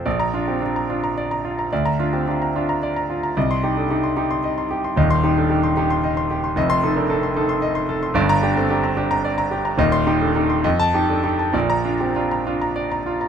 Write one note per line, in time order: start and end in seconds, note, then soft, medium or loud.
0.06 1.67 A#1 medium
0.06 0.28 D5 medium
0.20 0.42 A#5 medium
0.34 0.56 D4 medium
0.34 0.56 F4 medium
0.48 0.62 C4 soft
0.48 0.62 G4 medium
0.62 0.84 D4 medium
0.62 0.84 F4 medium
0.76 0.98 A#5 medium
0.90 1.11 D4 medium
0.90 1.11 F4 medium
1.04 1.25 A#5 medium
1.18 1.39 D5 medium
1.31 1.53 A#5 medium
1.45 1.66 F4 medium
1.59 1.72 A#5 medium
1.72 3.33 D2 medium
1.72 1.94 D5 medium
1.85 2.07 A#5 medium
1.99 2.21 D4 medium
1.99 2.21 F4 medium
2.13 2.27 C4 soft
2.13 2.27 G4 medium
2.28 2.50 D4 medium
2.28 2.50 F4 medium
2.42 2.63 A#5 medium
2.56 2.77 D4 medium
2.56 2.77 F4 medium
2.69 2.90 A#5 medium
2.83 3.04 D5 medium
2.96 3.18 A#5 medium
3.10 3.31 F4 medium
3.23 3.36 A#5 medium
3.37 4.93 C2 medium
3.37 3.58 D#5 medium
3.51 3.72 C6 medium
3.63 3.85 D#4 medium
3.63 3.85 G4 medium
3.77 3.90 D4 medium
3.77 3.90 A4 medium
3.91 4.12 D#4 medium
3.91 4.12 G4 medium
4.04 4.25 C6 medium
4.17 4.38 D#4 medium
4.17 4.38 G4 medium
4.31 4.52 C6 medium
4.44 4.65 D#5 medium
4.58 4.79 C6 medium
4.71 4.92 G4 medium
4.84 4.97 C6 medium
4.96 6.52 D#1 medium
4.96 6.52 D#2 medium
4.96 5.18 D#5 medium
5.10 5.32 C6 medium
5.23 5.45 D#4 medium
5.23 5.45 G4 medium
5.37 5.50 D4 medium
5.37 5.50 A4 medium
5.50 5.71 D#4 medium
5.50 5.71 G4 medium
5.63 5.84 C6 medium
5.77 5.98 D#4 medium
5.77 5.98 G4 medium
5.90 6.11 C6 medium
6.04 6.25 D#5 medium
6.17 6.38 C6 medium
6.31 6.51 G4 medium
6.44 6.57 C6 medium
6.56 8.11 F1 medium
6.56 8.12 F2 medium
6.56 6.78 D#5 medium
6.70 6.91 C6 loud
6.83 7.04 D#4 medium
6.83 7.04 A4 medium
6.96 7.09 D4 medium
6.96 7.09 A#4 medium
7.10 7.31 D#4 medium
7.10 7.31 A4 medium
7.23 7.44 C6 medium
7.36 7.57 D#4 medium
7.36 7.57 A4 medium
7.49 7.70 C6 medium
7.62 7.83 D#5 medium
7.75 7.96 C6 medium
7.89 8.10 A4 medium
8.03 8.16 C6 medium
8.14 9.73 G1 medium
8.14 9.74 G2 loud
8.14 8.37 D5 medium
8.29 8.51 A#5 loud
8.43 8.65 D4 medium
8.43 8.65 G4 medium
8.56 8.70 C4 medium
8.56 8.70 A4 medium
8.70 8.92 D4 medium
8.70 8.92 G4 medium
8.83 9.05 A#5 medium
8.97 9.18 D4 medium
8.97 9.18 G4 medium
9.11 9.32 A#5 medium
9.25 9.46 D5 medium
9.38 9.59 A#5 medium
9.51 9.73 G4 medium
9.65 9.78 A#5 medium
9.78 10.61 D#1 medium
9.78 10.61 D#2 loud
9.78 10.01 D#5 medium
9.92 10.15 C6 loud
10.07 10.29 D#4 medium
10.07 10.29 G4 medium
10.21 10.35 D4 medium
10.21 10.35 A4 medium
10.35 10.58 D#4 medium
10.35 10.58 G4 medium
10.50 10.64 C6 medium
10.64 11.51 F2 medium
10.64 10.87 D#5 medium
10.79 11.02 A5 loud
10.94 11.17 D#4 medium
10.94 11.18 G4 medium
11.09 11.24 D4 medium
11.09 11.24 A4 medium
11.24 11.48 D#4 medium
11.24 11.48 G4 medium
11.39 11.54 A5 medium
11.53 13.28 A#1 medium
11.53 13.28 A#2 medium
11.53 11.79 D5 medium
11.70 11.94 A#5 medium
11.85 12.09 D4 medium
11.85 12.09 F4 medium
12.00 12.15 C4 medium
12.00 12.15 G4 medium
12.16 12.40 D4 medium
12.16 12.40 F4 medium
12.31 12.55 A#5 medium
12.47 12.70 D4 medium
12.47 12.70 F4 medium
12.62 12.85 A#5 medium
12.76 13.00 D5 medium
12.92 13.15 A#5 medium
13.06 13.28 F4 medium
13.21 13.28 A#5 medium